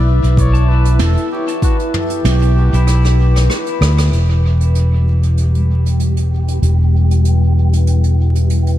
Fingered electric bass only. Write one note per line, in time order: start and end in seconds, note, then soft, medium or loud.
0.00 0.20 B1 medium
0.23 0.97 B1 medium
1.00 1.15 E1 medium
2.25 2.70 B1 loud
2.73 3.47 B1 medium
3.81 4.09 D2 medium
4.12 6.59 E1 medium
6.62 8.78 E1 medium